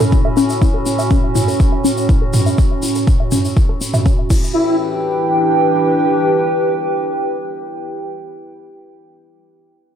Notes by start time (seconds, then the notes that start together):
Already playing: A2 C#4 F#4 A4 C#5 B5 E6
0.00 A4, mid tom
0.12 C#4, kick, shaker
0.25 E5
0.37 C#4, shaker
0.49 shaker
0.62 E4, kick, shaker
0.74 A4
0.86 C#4, shaker
0.99 E5, shaker
1.10 C#4, kick, shaker
1.35 E4, mid tom, shaker
1.48 A4, shaker
1.60 C#4, kick, shaker
1.72 E5
1.84 C#4, shaker
1.97 shaker
2.09 E4, kick, shaker
2.22 A4
2.33 C#4, mid tom, shaker
2.46 E5, shaker
2.58 C#4, kick, shaker
2.83 E4, shaker
2.95 A4, shaker
3.07 C#4, kick, shaker
3.20 E5
3.31 C#4, mid tom, shaker
3.45 shaker
3.57 E4, kick, shaker
3.69 A4
3.81 C#4, shaker
3.94 E5, mid tom, shaker
4.06 C#4, kick, shaker
4.30 E3 E4 G4 B4 G5, kick, crash, shaker
4.38 D4
4.44 shaker
4.70 G4
4.77 B4